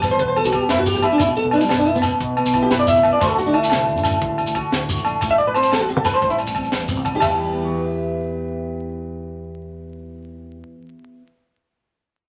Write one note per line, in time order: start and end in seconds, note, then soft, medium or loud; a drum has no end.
0.00 0.17 G1 medium
0.00 0.18 E2 medium
0.00 1.03 B2 medium
0.00 0.36 G3 medium
0.00 0.52 B3 medium
0.00 snare soft
0.00 closed hi-hat soft
0.00 low agogo medium
0.00 shekere medium
0.11 0.19 C5 medium
0.19 0.42 B1 medium
0.19 0.69 E2 medium
0.19 0.28 B4 medium
0.19 kick medium
0.19 closed hi-hat medium
0.28 0.36 C5 medium
0.36 1.20 G3 medium
0.36 0.44 A4 medium
0.36 closed hi-hat soft
0.36 low agogo medium
0.44 0.59 B1 medium
0.44 0.53 F#4 medium
0.44 shekere medium
0.53 1.37 B3 soft
0.53 0.61 G4 medium
0.53 kick medium
0.53 closed hi-hat soft
0.53 low agogo medium
0.69 0.94 E1 loud
0.69 0.86 F#2 medium
0.69 0.78 E4 medium
0.69 snare medium
0.69 closed hi-hat medium
0.79 0.86 F#4 medium
0.86 1.03 G2 medium
0.86 0.95 G4 medium
0.86 closed hi-hat medium
0.86 shekere loud
0.94 1.09 A1 medium
0.94 1.03 G4 medium
0.94 shekere soft
1.02 1.19 A2 medium
1.02 1.11 E4 medium
1.02 closed hi-hat soft
1.02 low agogo medium
1.02 shekere soft
1.12 1.20 D4 medium
1.18 1.35 B1 medium
1.18 1.70 B2 medium
1.18 1.28 E4 medium
1.18 kick medium
1.18 closed hi-hat medium
1.18 low agogo medium
1.18 shekere medium
1.29 muted clean electric guitar stroke medium
1.36 1.53 B3 medium
1.36 1.45 A4 medium
1.36 closed hi-hat soft
1.36 shekere soft
1.45 1.60 B1 medium
1.51 1.87 B3 medium
1.51 1.61 E4 medium
1.51 closed hi-hat soft
1.51 low agogo medium
1.61 1.70 G3 soft
1.61 shekere medium
1.69 1.96 B1 medium
1.69 2.20 F#2 medium
1.69 1.78 B3 medium
1.69 snare medium
1.69 closed hi-hat medium
1.69 low agogo medium
1.79 1.87 D4 medium
1.87 2.03 B3 medium
1.87 1.95 E4 medium
1.87 closed hi-hat soft
1.95 2.10 B2 medium
1.95 2.00 B3 medium
1.95 shekere soft
2.02 2.37 B3 medium
2.02 snare soft
2.02 closed hi-hat soft
2.02 low agogo medium
2.02 shekere medium
2.20 2.43 B1 medium
2.20 2.70 B2 medium
2.20 kick medium
2.20 closed hi-hat medium
2.37 3.04 B3 medium
2.37 closed hi-hat soft
2.37 low agogo medium
2.45 2.68 B1 medium
2.45 shekere medium
2.54 2.87 E4 medium
2.54 kick medium
2.54 closed hi-hat soft
2.54 low agogo medium
2.63 2.70 G4 medium
2.70 2.96 B1 medium
2.70 3.19 F#2 medium
2.70 2.79 B4 medium
2.70 snare medium
2.70 closed hi-hat medium
2.79 2.87 D5 medium
2.87 3.21 E4 medium
2.87 3.11 E5 medium
2.87 closed hi-hat medium
2.87 shekere loud
2.96 3.11 C2 medium
2.96 shekere soft
3.03 3.19 B3 medium
3.03 kick medium
3.03 closed hi-hat soft
3.03 low agogo medium
3.03 shekere soft
3.13 3.20 D5 medium
3.21 3.36 D2 medium
3.21 4.20 D3 medium
3.21 5.20 A3 medium
3.21 3.37 D4 medium
3.21 4.55 F#4 medium
3.21 3.30 C5 medium
3.21 kick medium
3.21 closed hi-hat medium
3.21 low agogo medium
3.21 shekere medium
3.30 3.37 A4 medium
3.38 3.54 D4 medium
3.38 3.46 F#4 medium
3.38 closed hi-hat soft
3.38 shekere soft
3.46 3.68 A1 medium
3.46 3.55 D4 medium
3.54 3.86 D4 medium
3.54 4.55 E4 medium
3.54 closed hi-hat soft
3.54 low agogo medium
3.63 shekere medium
3.70 3.97 C2 medium
3.70 4.21 A2 medium
3.70 snare medium
3.70 closed hi-hat medium
3.70 low agogo medium
3.87 4.04 D4 medium
3.87 closed hi-hat soft
3.97 4.19 F#2 medium
3.97 shekere soft
4.03 4.38 D4 medium
4.03 snare soft
4.03 closed hi-hat soft
4.03 low agogo medium
4.03 shekere medium
4.22 4.44 A1 medium
4.22 5.22 D3 medium
4.22 kick medium
4.22 closed hi-hat soft
4.38 5.04 D4 soft
4.38 closed hi-hat soft
4.38 low agogo medium
4.47 4.61 A1 medium
4.47 shekere medium
4.55 4.89 F#4 medium
4.55 kick medium
4.55 closed hi-hat soft
4.55 low agogo medium
4.72 4.99 D2 loud
4.72 5.20 A2 medium
4.72 snare medium
4.72 closed hi-hat medium
4.89 5.20 F#4 medium
4.89 closed hi-hat soft
4.89 shekere medium
4.97 5.12 A#1 medium
4.97 shekere soft
5.05 5.20 D4 medium
5.05 closed hi-hat soft
5.05 low agogo medium
5.05 shekere soft
5.21 5.37 A1 medium
5.21 5.72 A2 medium
5.21 kick medium
5.21 closed hi-hat medium
5.21 low agogo medium
5.21 shekere medium
5.31 5.38 E5 medium
5.38 6.06 G3 medium
5.38 5.46 D5 medium
5.38 closed hi-hat soft
5.47 5.62 A1 medium
5.47 5.55 B4 medium
5.54 5.88 C4 medium
5.54 5.71 C5 medium
5.54 closed hi-hat soft
5.54 low agogo medium
5.54 shekere soft
5.63 shekere medium
5.71 5.97 A1 medium
5.71 6.22 E2 soft
5.71 5.81 A4 medium
5.71 snare medium
5.71 closed hi-hat medium
5.71 low agogo medium
5.80 5.89 F#4 medium
5.80 shekere soft
5.89 6.55 C4 medium
5.89 5.97 G4 medium
5.89 closed hi-hat soft
5.97 6.12 A2 medium
5.97 6.05 A4 medium
6.05 6.39 G3 medium
6.05 6.13 B4 medium
6.05 snare soft
6.05 closed hi-hat soft
6.05 low agogo medium
6.05 shekere medium
6.14 6.21 C5 medium
6.22 6.45 A1 medium
6.22 6.73 A2 medium
6.22 6.30 C5 medium
6.22 kick medium
6.22 closed hi-hat medium
6.30 6.35 E4 medium
6.30 shekere soft
6.39 7.06 G3 soft
6.39 closed hi-hat soft
6.39 low agogo soft
6.39 shekere soft
6.47 6.70 A1 medium
6.47 shekere medium
6.55 6.89 C4 soft
6.55 kick medium
6.55 closed hi-hat soft
6.55 low agogo medium
6.64 shekere soft
6.72 6.96 A1 medium
6.72 7.22 E2 medium
6.72 snare medium
6.72 closed hi-hat medium
6.72 shekere soft
6.80 shekere soft
6.88 7.21 C4 soft
6.88 closed hi-hat soft
6.88 shekere medium
6.96 7.12 C2 medium
7.05 7.42 G3 medium
7.05 kick medium
7.05 closed hi-hat soft
7.05 low agogo medium
7.05 shekere soft
7.16 10.55 G4 medium
7.20 10.61 E2 medium
7.20 10.73 E2 medium
7.20 7.28 E5 medium
7.20 kick medium
7.20 floor tom medium
7.20 crash medium
7.20 low agogo medium
7.20 shekere medium
7.28 muted clean electric guitar stroke medium
7.33 10.83 E3 medium
7.43 7.71 G3 medium
7.53 7.78 B3 medium
7.63 7.84 F#4 soft
7.72 11.15 G4 medium
7.78 11.21 B4 medium
7.84 11.27 E5 medium